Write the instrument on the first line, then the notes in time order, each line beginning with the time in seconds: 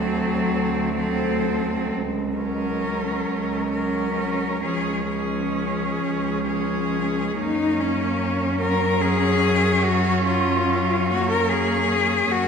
cello
Already playing: D2 F#3 C4 A4
0.54 D2
0.97 F#3 C4 A4
1.90 C#2
2.36 F#3 C#4 A#4
3.29 C#2
3.73 F#3 C#4 A#4
4.62 C#2 F3 C#4 G#4
5.08 F3 C#4 G#4
6.01 C#2
6.47 F3 C#4 G#4
7.36 F#2 A#3 C#4 D#4
7.80 C#4
8.61 F#3 A#4
9.02 G#4
9.84 F#3 F#4
10.26 F4
11.08 A#3 F#4
11.30 A#4
11.50 G#4
12.30 F#2 A#3 C#4 F#4